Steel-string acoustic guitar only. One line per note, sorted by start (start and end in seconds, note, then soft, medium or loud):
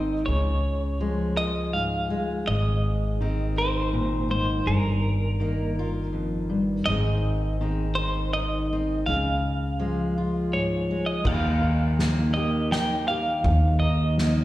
0.00 0.22 G#2 medium
0.00 0.23 D#3 medium
0.00 0.24 C4 soft
0.00 0.23 D#4 soft
0.27 1.00 C#3 medium
1.00 2.43 F3 medium
1.00 2.09 G#3 soft
1.38 2.43 F4 soft
1.73 2.42 G#2 soft
2.10 3.20 G#3 soft
2.48 4.27 G#2 medium
3.21 5.39 D#3 medium
3.21 4.63 C4 soft
3.56 5.79 D#4 soft
3.93 4.30 A#2 soft
4.29 4.66 G#2 medium
4.66 6.12 G2 medium
5.40 6.87 D#3 medium
5.40 6.83 A#3 soft
5.79 6.83 F4 soft
6.13 6.49 F2 medium
6.50 6.86 G2 medium
6.88 9.03 G#2 medium
6.88 7.60 D#3 soft
6.88 7.61 C4 soft
6.88 7.98 D#4 soft
6.88 9.04 G#4 medium
7.61 8.33 D#3 medium
7.61 8.71 C4 soft
7.99 9.03 D#4 soft
8.34 9.03 D#3 medium
8.73 9.03 C4 medium
9.08 9.81 C#3 medium
9.79 11.21 F3 medium
9.79 10.89 G#3 soft
10.18 11.22 F4 soft
10.53 11.21 G#2 medium
10.91 11.27 G#3 soft
11.24 13.44 D#2 medium
11.61 13.80 D#3 medium
11.99 13.41 A#3 medium
12.36 13.09 G4 medium
12.73 13.41 D#4 medium
13.10 13.41 G4 medium
13.46 14.44 D#2 medium
13.81 14.44 D#3 medium
14.20 14.44 A#3 medium